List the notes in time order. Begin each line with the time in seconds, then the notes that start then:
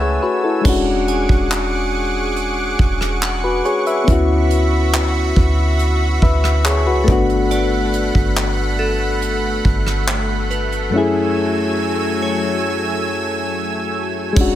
Already playing: C#2 A3 C#4 B4 E5 F#5 G#5 A5 E6
0.00 G#4 C#5
0.22 F#4 B4 C#5
0.44 E4 A4
0.61 G#3 C#4 G#4 F#5 C#6 D6, kick, crash
0.65 E1 D4 F#4
1.08 G#5, closed hi-hat
1.29 E1, kick
1.52 clap
2.36 closed hi-hat
2.79 E1, kick
3.01 cross-stick
3.23 F#5, clap
3.44 F#4 B4
3.65 G#4 C#5, closed hi-hat
3.87 B4 E5, closed hi-hat
4.04 D2 B3 C#4 F#4 E5 B5, kick, closed hi-hat
4.09 E4 F#4
4.51 closed hi-hat
4.94 clap
5.36 D2, kick
5.79 closed hi-hat
6.22 D2 B4 E5, kick
6.44 cross-stick
6.65 G#4 C#5, clap, closed hi-hat
6.87 C#2 F#4 B4
7.04 A3 B3 F#5, kick
7.08 G1 D4 F#4, closed hi-hat
7.29 closed hi-hat
7.51 D5, closed hi-hat
7.93 closed hi-hat
8.15 G1, kick
8.37 clap
8.79 A4
9.22 closed hi-hat
9.65 G1, kick
9.87 cross-stick
10.08 clap, closed hi-hat
10.51 B4, closed hi-hat
10.72 closed hi-hat
10.90 F#2 F#3 A3 C#4 G#5 E6
10.96 E4 G#4
12.22 C#5
14.33 G#3 C#4 G#4 F#5 C#6, kick, crash
14.37 E1 D4 F#4